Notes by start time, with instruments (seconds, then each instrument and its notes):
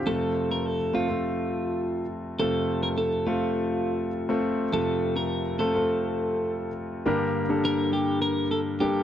0.06 grand piano F2 C3 A3 C4 F4 A4, clean electric guitar A4
0.51 clean electric guitar A#4
0.66 clean electric guitar A4
0.94 grand piano A3 C4 F4 A4, clean electric guitar F4
1.08 grand piano A3 C4 F4 A4
2.39 grand piano F2 C3 A3 C4 F4 A4, clean electric guitar A4
2.83 clean electric guitar A#4
2.98 clean electric guitar A4
3.27 grand piano A3 C4 F4 A4, clean electric guitar F4
4.29 grand piano A3 C4 F4 A4
4.72 grand piano F2 C3 A3 C4 F4 A4, clean electric guitar A4
5.16 clean electric guitar A#4
5.59 grand piano A3 C4 F4 A4, clean electric guitar A4
5.74 grand piano A3 C4 F4 A4
7.06 grand piano G2 D3 G3 A#3 D4 G4 A#4
7.49 grand piano G3 A#3 D4 G4 A4
7.65 clean electric guitar A#4
7.93 clean electric guitar G4
8.22 clean electric guitar A#4
8.51 clean electric guitar A4
8.80 grand piano G3 A#3 D4 G4 A4, clean electric guitar G4